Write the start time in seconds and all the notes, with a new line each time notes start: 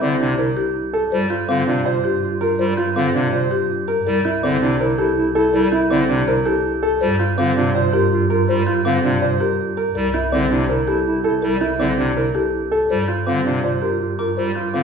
Already playing: C2
0.01 D3 C4 E4 D5 D6
0.20 C3 D4 E4
0.38 E4 A#4 C5
0.56 E4 G4 G6
0.75 E4
0.93 A4
1.12 G2 G3 F4 C5
1.30 F4 G6
1.49 D3 C4 F4 F5 D6
1.67 C3 D4 F4
1.85 F4 C5 D5
2.04 F4 G4 G6
2.22 F4
2.41 F4 A#4
2.59 G3 F4 C5
2.77 F4 G6
2.96 D3 C4 F4 F5 D6
3.14 C3 D4 F4
3.32 F4 C5 D5
3.51 F4 G4 G6
3.69 F4
3.88 A#4
4.06 C2 G3 E4 A#4
4.25 E4 G6
4.43 D3 C4 E4 D5 D6
4.61 C3 D4 E4
4.80 E4 A#4 C5
4.98 E4 G4 A4 G6
5.17 E4
5.35 E4 A4
5.54 G3 E4 A#4
5.72 E4 G6
5.90 D3 C4 E4 D5 D6
6.09 C3 D4 E4
6.27 E4 A#4 C5
6.46 E4 G4 A4 G6
6.65 E4
6.83 A4
7.01 G2 G3 F4 C5
7.19 F4 G6
7.38 D3 C4 F4 F5 D6
7.56 C3 D4 F4
7.75 F4 C5 D5
7.93 F4 G4 A#4 G6
8.12 F4
8.30 F4 A#4
8.48 G3 F4 C5
8.67 F4 G6
8.85 D3 C4 F4 F5 D6
9.04 C3 D4 F4
9.22 F4 C5 D5
9.40 F4 G4 A#4 G6
9.59 F4
9.77 A#4
9.95 C2 G3 E4 A#4
10.14 E4 G6
10.32 D3 C4 E4 D5 D6
10.51 C3 D4 E4
10.69 E4 A#4 C5
10.87 E4 G4 A4 G6
11.06 E4
11.24 E4 A4
11.42 G3 E4 A#4
11.61 E4 G6
11.79 D3 C4 E4 D5 D6
11.98 C3 D4 E4
12.16 E4 A#4 C5
12.35 E4 G4 A4 G6
12.53 E4
12.72 A4
12.90 G2 G3 F4 C5
13.08 F4 G6
13.27 D3 C4 F4 F5 D6
13.45 C3 D4 F4
13.64 F4 C5 D5
13.82 F4 G4 A#4 G6
14.00 F4
14.19 F4 A#4 D6
14.37 G3 F4 C5
14.55 F4 G6
14.74 D3 C4 F4 F5 D6